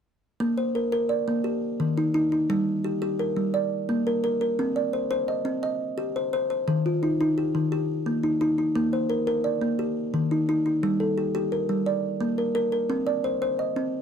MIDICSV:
0, 0, Header, 1, 2, 480
1, 0, Start_track
1, 0, Key_signature, -2, "major"
1, 0, Tempo, 347222
1, 564, Time_signature, 12, 3, 24, 8
1, 19380, End_track
2, 0, Start_track
2, 0, Title_t, "Kalimba"
2, 0, Program_c, 0, 108
2, 555, Note_on_c, 0, 58, 79
2, 796, Note_on_c, 0, 72, 56
2, 1039, Note_on_c, 0, 70, 59
2, 1042, Note_off_c, 0, 58, 0
2, 1260, Note_off_c, 0, 70, 0
2, 1276, Note_on_c, 0, 70, 72
2, 1510, Note_on_c, 0, 74, 57
2, 1524, Note_off_c, 0, 72, 0
2, 1764, Note_off_c, 0, 70, 0
2, 1764, Note_on_c, 0, 58, 65
2, 1994, Note_on_c, 0, 67, 62
2, 2008, Note_off_c, 0, 58, 0
2, 2243, Note_off_c, 0, 74, 0
2, 2486, Note_on_c, 0, 51, 69
2, 2726, Note_off_c, 0, 67, 0
2, 2731, Note_on_c, 0, 63, 63
2, 2947, Note_off_c, 0, 63, 0
2, 2963, Note_on_c, 0, 63, 74
2, 2971, Note_off_c, 0, 51, 0
2, 3193, Note_off_c, 0, 63, 0
2, 3209, Note_on_c, 0, 63, 58
2, 3453, Note_on_c, 0, 55, 79
2, 3694, Note_off_c, 0, 63, 0
2, 3932, Note_on_c, 0, 67, 60
2, 3937, Note_off_c, 0, 55, 0
2, 4156, Note_off_c, 0, 67, 0
2, 4172, Note_on_c, 0, 67, 70
2, 4416, Note_on_c, 0, 70, 60
2, 4652, Note_on_c, 0, 55, 64
2, 4657, Note_off_c, 0, 67, 0
2, 4892, Note_on_c, 0, 74, 66
2, 4897, Note_off_c, 0, 55, 0
2, 5140, Note_off_c, 0, 70, 0
2, 5377, Note_on_c, 0, 58, 72
2, 5619, Note_off_c, 0, 74, 0
2, 5622, Note_on_c, 0, 70, 64
2, 5841, Note_off_c, 0, 70, 0
2, 5858, Note_on_c, 0, 70, 69
2, 5861, Note_off_c, 0, 58, 0
2, 6080, Note_off_c, 0, 70, 0
2, 6097, Note_on_c, 0, 70, 62
2, 6345, Note_on_c, 0, 60, 77
2, 6579, Note_on_c, 0, 74, 54
2, 6581, Note_off_c, 0, 70, 0
2, 6819, Note_on_c, 0, 72, 55
2, 6826, Note_off_c, 0, 60, 0
2, 7042, Note_off_c, 0, 72, 0
2, 7059, Note_on_c, 0, 72, 73
2, 7301, Note_on_c, 0, 75, 57
2, 7303, Note_off_c, 0, 74, 0
2, 7534, Note_on_c, 0, 60, 65
2, 7543, Note_off_c, 0, 72, 0
2, 7765, Note_off_c, 0, 75, 0
2, 7782, Note_on_c, 0, 75, 63
2, 8021, Note_off_c, 0, 60, 0
2, 8261, Note_on_c, 0, 67, 66
2, 8505, Note_off_c, 0, 75, 0
2, 8515, Note_on_c, 0, 72, 64
2, 8736, Note_off_c, 0, 72, 0
2, 8744, Note_off_c, 0, 67, 0
2, 8752, Note_on_c, 0, 72, 75
2, 8972, Note_off_c, 0, 72, 0
2, 8989, Note_on_c, 0, 72, 59
2, 9229, Note_on_c, 0, 51, 77
2, 9468, Note_off_c, 0, 72, 0
2, 9481, Note_on_c, 0, 65, 57
2, 9708, Note_off_c, 0, 51, 0
2, 9715, Note_on_c, 0, 63, 61
2, 9945, Note_off_c, 0, 63, 0
2, 9962, Note_on_c, 0, 63, 70
2, 10194, Note_off_c, 0, 65, 0
2, 10198, Note_on_c, 0, 67, 55
2, 10433, Note_on_c, 0, 51, 65
2, 10434, Note_off_c, 0, 63, 0
2, 10656, Note_off_c, 0, 67, 0
2, 10672, Note_on_c, 0, 67, 62
2, 10909, Note_off_c, 0, 51, 0
2, 11145, Note_on_c, 0, 58, 64
2, 11383, Note_on_c, 0, 63, 62
2, 11388, Note_off_c, 0, 67, 0
2, 11609, Note_off_c, 0, 63, 0
2, 11625, Note_off_c, 0, 58, 0
2, 11626, Note_on_c, 0, 63, 72
2, 11848, Note_off_c, 0, 63, 0
2, 11865, Note_on_c, 0, 63, 58
2, 12102, Note_on_c, 0, 58, 76
2, 12344, Note_off_c, 0, 63, 0
2, 12345, Note_on_c, 0, 72, 58
2, 12574, Note_on_c, 0, 70, 60
2, 12582, Note_off_c, 0, 58, 0
2, 12801, Note_off_c, 0, 70, 0
2, 12818, Note_on_c, 0, 70, 70
2, 13052, Note_on_c, 0, 74, 58
2, 13062, Note_off_c, 0, 72, 0
2, 13291, Note_on_c, 0, 58, 63
2, 13299, Note_off_c, 0, 70, 0
2, 13534, Note_on_c, 0, 67, 62
2, 13536, Note_off_c, 0, 58, 0
2, 13775, Note_off_c, 0, 74, 0
2, 14014, Note_on_c, 0, 51, 70
2, 14255, Note_off_c, 0, 67, 0
2, 14256, Note_on_c, 0, 63, 64
2, 14482, Note_off_c, 0, 63, 0
2, 14495, Note_off_c, 0, 51, 0
2, 14499, Note_on_c, 0, 63, 70
2, 14717, Note_off_c, 0, 63, 0
2, 14734, Note_on_c, 0, 63, 58
2, 14974, Note_on_c, 0, 55, 79
2, 15208, Note_on_c, 0, 69, 56
2, 15214, Note_off_c, 0, 63, 0
2, 15449, Note_on_c, 0, 67, 57
2, 15453, Note_off_c, 0, 55, 0
2, 15670, Note_off_c, 0, 67, 0
2, 15687, Note_on_c, 0, 67, 74
2, 15927, Note_on_c, 0, 70, 58
2, 15929, Note_off_c, 0, 69, 0
2, 16162, Note_on_c, 0, 55, 64
2, 16168, Note_off_c, 0, 67, 0
2, 16401, Note_on_c, 0, 74, 63
2, 16406, Note_off_c, 0, 55, 0
2, 16647, Note_off_c, 0, 70, 0
2, 16873, Note_on_c, 0, 58, 70
2, 17115, Note_on_c, 0, 70, 60
2, 17123, Note_off_c, 0, 74, 0
2, 17332, Note_off_c, 0, 70, 0
2, 17348, Note_on_c, 0, 70, 74
2, 17359, Note_off_c, 0, 58, 0
2, 17571, Note_off_c, 0, 70, 0
2, 17588, Note_on_c, 0, 70, 61
2, 17827, Note_on_c, 0, 60, 78
2, 18062, Note_on_c, 0, 74, 60
2, 18075, Note_off_c, 0, 70, 0
2, 18306, Note_on_c, 0, 72, 59
2, 18314, Note_off_c, 0, 60, 0
2, 18533, Note_off_c, 0, 72, 0
2, 18550, Note_on_c, 0, 72, 67
2, 18787, Note_on_c, 0, 75, 58
2, 18790, Note_off_c, 0, 74, 0
2, 19027, Note_on_c, 0, 60, 70
2, 19034, Note_off_c, 0, 72, 0
2, 19380, Note_off_c, 0, 60, 0
2, 19380, Note_off_c, 0, 75, 0
2, 19380, End_track
0, 0, End_of_file